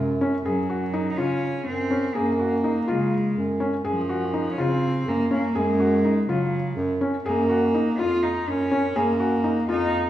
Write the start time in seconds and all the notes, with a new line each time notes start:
Already playing: F#2
0.21 C#4
0.44 F#2 F#3 G#4
0.70 F#4
0.94 D#4
1.11 D#4
1.17 C#3 C#4 F4
1.66 F#2 C4
1.91 C#4
2.15 F#2 A#3 G#4
2.40 F#4
2.64 D#4
2.88 C#3 G#3 F4
3.37 F#2
3.60 C#4
3.84 F#2 F3 G#4
4.09 F#4
4.34 D#4
4.52 C#4
4.58 C#3 C4 F4
5.07 F#2 A#3
5.31 A#3 C#4
5.55 F#2 G#3 G#4
5.80 F#4
6.05 D#4
6.28 C#3 F#3 F4
6.76 F#2
7.01 C#4
7.25 F#2 A#3 G#4
7.50 F#4
7.75 D#4
7.98 F2 F4
8.23 D#4
8.47 F#2 C#4
8.71 C#4
8.96 F#2 A#3 G#4
9.20 F#4
9.44 D#4
9.68 F2 D#4 F4